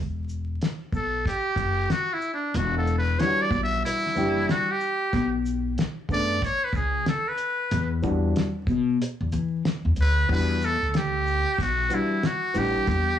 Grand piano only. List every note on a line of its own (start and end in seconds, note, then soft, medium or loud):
3.18 4.11 E3 medium
3.18 4.11 G3 medium
3.18 4.12 D4 medium
3.18 3.28 E4 medium
3.27 4.15 F#4 medium
4.15 4.64 E3 medium
4.15 4.64 G3 medium
4.15 4.65 D4 medium
4.15 4.65 G4 medium
6.09 6.34 C#3 medium
6.09 6.35 A3 medium
6.09 6.35 B3 medium
6.09 6.35 D4 medium
8.02 8.43 E3 medium
8.02 8.43 G3 medium
8.02 8.44 D4 medium
8.02 8.44 F#4 medium
10.29 10.54 E3 medium
10.29 10.54 G3 medium
10.29 10.55 D4 medium
10.29 10.55 F#4 medium
11.89 12.15 E3 medium
11.89 12.15 G3 medium
11.89 12.16 D4 medium
11.89 12.16 F#4 medium
12.54 13.03 E3 medium
12.54 13.03 G3 medium
12.54 13.04 D4 medium
12.54 13.04 F#5 medium